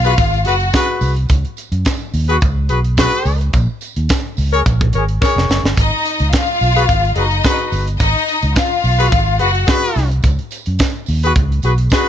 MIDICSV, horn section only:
0, 0, Header, 1, 2, 480
1, 0, Start_track
1, 0, Tempo, 559180
1, 1112, Time_signature, 4, 2, 24, 8
1, 10375, End_track
2, 0, Start_track
2, 0, Title_t, "Horn section"
2, 0, Program_c, 0, 61
2, 40, Note_on_c, 0, 68, 99
2, 41, Note_on_c, 0, 66, 89
2, 42, Note_on_c, 0, 71, 110
2, 111, Note_off_c, 0, 68, 0
2, 112, Note_off_c, 0, 66, 0
2, 113, Note_off_c, 0, 71, 0
2, 389, Note_on_c, 0, 66, 81
2, 389, Note_on_c, 0, 68, 81
2, 389, Note_on_c, 0, 71, 99
2, 471, Note_off_c, 0, 66, 0
2, 471, Note_off_c, 0, 68, 0
2, 471, Note_off_c, 0, 71, 0
2, 635, Note_on_c, 0, 66, 116
2, 635, Note_on_c, 0, 68, 105
2, 636, Note_on_c, 0, 71, 127
2, 982, Note_off_c, 0, 66, 0
2, 983, Note_off_c, 0, 68, 0
2, 983, Note_off_c, 0, 71, 0
2, 1964, Note_on_c, 0, 66, 101
2, 1964, Note_on_c, 0, 68, 100
2, 1964, Note_on_c, 0, 71, 111
2, 2035, Note_off_c, 0, 66, 0
2, 2035, Note_off_c, 0, 68, 0
2, 2035, Note_off_c, 0, 71, 0
2, 2315, Note_on_c, 0, 71, 87
2, 2317, Note_on_c, 0, 66, 81
2, 2319, Note_on_c, 0, 68, 77
2, 2396, Note_off_c, 0, 71, 0
2, 2397, Note_off_c, 0, 66, 0
2, 2399, Note_off_c, 0, 68, 0
2, 2557, Note_on_c, 0, 71, 127
2, 2558, Note_on_c, 0, 66, 118
2, 2558, Note_on_c, 0, 68, 117
2, 2904, Note_off_c, 0, 71, 0
2, 2905, Note_off_c, 0, 66, 0
2, 2905, Note_off_c, 0, 68, 0
2, 3886, Note_on_c, 0, 70, 98
2, 3887, Note_on_c, 0, 68, 90
2, 3888, Note_on_c, 0, 73, 112
2, 3957, Note_off_c, 0, 68, 0
2, 3957, Note_off_c, 0, 70, 0
2, 3958, Note_off_c, 0, 73, 0
2, 4243, Note_on_c, 0, 70, 84
2, 4243, Note_on_c, 0, 73, 89
2, 4245, Note_on_c, 0, 68, 83
2, 4321, Note_off_c, 0, 70, 0
2, 4322, Note_off_c, 0, 68, 0
2, 4322, Note_off_c, 0, 73, 0
2, 4480, Note_on_c, 0, 68, 98
2, 4481, Note_on_c, 0, 70, 102
2, 4481, Note_on_c, 0, 73, 113
2, 4826, Note_off_c, 0, 68, 0
2, 4826, Note_off_c, 0, 70, 0
2, 4826, Note_off_c, 0, 73, 0
2, 5801, Note_on_c, 0, 66, 96
2, 5802, Note_on_c, 0, 68, 102
2, 5804, Note_on_c, 0, 71, 112
2, 5873, Note_off_c, 0, 66, 0
2, 5874, Note_off_c, 0, 68, 0
2, 5875, Note_off_c, 0, 71, 0
2, 6151, Note_on_c, 0, 68, 91
2, 6153, Note_on_c, 0, 66, 80
2, 6154, Note_on_c, 0, 71, 94
2, 6233, Note_off_c, 0, 68, 0
2, 6234, Note_off_c, 0, 66, 0
2, 6235, Note_off_c, 0, 71, 0
2, 6391, Note_on_c, 0, 71, 125
2, 6392, Note_on_c, 0, 66, 106
2, 6392, Note_on_c, 0, 68, 103
2, 6741, Note_off_c, 0, 66, 0
2, 6741, Note_off_c, 0, 68, 0
2, 6741, Note_off_c, 0, 71, 0
2, 7710, Note_on_c, 0, 68, 91
2, 7712, Note_on_c, 0, 66, 101
2, 7713, Note_on_c, 0, 71, 113
2, 7785, Note_off_c, 0, 68, 0
2, 7787, Note_off_c, 0, 66, 0
2, 7787, Note_off_c, 0, 71, 0
2, 8063, Note_on_c, 0, 66, 83
2, 8063, Note_on_c, 0, 68, 75
2, 8065, Note_on_c, 0, 71, 90
2, 8147, Note_off_c, 0, 66, 0
2, 8147, Note_off_c, 0, 68, 0
2, 8148, Note_off_c, 0, 71, 0
2, 8303, Note_on_c, 0, 66, 104
2, 8305, Note_on_c, 0, 68, 110
2, 8305, Note_on_c, 0, 71, 127
2, 8656, Note_off_c, 0, 66, 0
2, 8657, Note_off_c, 0, 68, 0
2, 8657, Note_off_c, 0, 71, 0
2, 9641, Note_on_c, 0, 68, 95
2, 9642, Note_on_c, 0, 66, 104
2, 9642, Note_on_c, 0, 71, 108
2, 9712, Note_off_c, 0, 68, 0
2, 9713, Note_off_c, 0, 66, 0
2, 9713, Note_off_c, 0, 71, 0
2, 9987, Note_on_c, 0, 66, 88
2, 9988, Note_on_c, 0, 71, 91
2, 9990, Note_on_c, 0, 68, 81
2, 10070, Note_off_c, 0, 66, 0
2, 10070, Note_off_c, 0, 71, 0
2, 10071, Note_off_c, 0, 68, 0
2, 10233, Note_on_c, 0, 66, 114
2, 10233, Note_on_c, 0, 68, 118
2, 10234, Note_on_c, 0, 71, 119
2, 10375, Note_off_c, 0, 66, 0
2, 10375, Note_off_c, 0, 68, 0
2, 10375, Note_off_c, 0, 71, 0
2, 10375, End_track
0, 0, End_of_file